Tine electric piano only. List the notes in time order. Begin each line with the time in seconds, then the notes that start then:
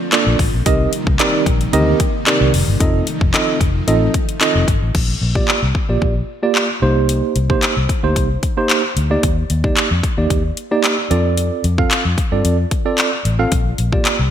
0.12 A#3 D4 F4 A4 D5
0.66 C4 D#4 G4 A#4 D#5
1.19 C4 D#4 G4 A#4 D5
1.73 C4 D#4 G4 A#4 D#5
2.27 C4 D#4 G4 A#4 D5
2.80 C4 D#4 F4 A4 D#5
3.34 C4 D#4 F4 A4 D#5
3.87 C4 D#4 F4 A4 D#5
4.41 C4 D#4 F4 A4 D#5
5.35 A#3 F4 G4 D5
5.89 A#3 F4 G4 D5
6.43 A#3 F4 G4 D5
6.82 A#3 D#4 G4 C5
7.50 A#3 D#4 G4 C5
8.03 A#3 D#4 G4 C5
8.57 A#3 D#4 G4 C5
9.11 A#3 D#4 G4 D5
9.64 A#3 D#4 G4 D5
10.18 A#3 D#4 G4 D5
10.71 A#3 D#4 G4 D5
11.11 C4 F4 A4 D5
11.78 C4 F4 A4 F5
12.32 C4 F4 A4 D5
12.85 C4 F4 A4 D5
13.39 C4 F4 A4 F5
13.93 A#3 F4 G4 D5